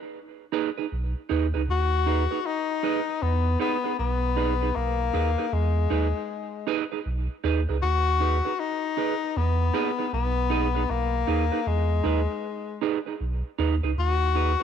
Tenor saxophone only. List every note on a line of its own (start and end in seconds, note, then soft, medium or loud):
1.71 2.48 F#4 loud
2.46 3.24 D#4 medium
3.22 3.60 B3 loud
3.61 3.96 B3 loud
3.99 4.77 B3 medium
4.75 5.54 A#3 medium
5.53 6.67 G#3 medium
7.83 8.61 F#4 loud
8.60 9.38 D#4 medium
9.37 10.13 B3 medium
10.13 10.92 B3 medium
10.90 11.69 A#3 medium
11.67 12.82 G#3 medium
13.99 14.63 F#4 loud